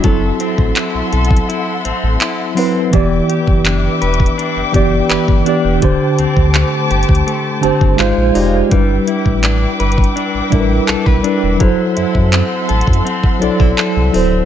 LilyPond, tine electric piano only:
\new Staff \with { instrumentName = "Tine electric piano" } { \time 4/4 \key e \minor \tempo 4 = 83 <fis c' e' a'>4. r2 <fis c' e' b'>8 | <e b g' d''>4. r4 <e b g' d''>4 <e b g' d''>8 | <d d' g' c''>4. r4 <d d' g' c'' a''>8 <gis dis' eis' bis' eis''>8 <gis dis' eis' g' d''>8 | <g d' e' b'>4. r4 <g d' e' ais' b'>4 <g d' e' b'>8 |
<fis e' a' c''>4. r4 <fis e' a' d''>4 <fis e' a' c''>8 | }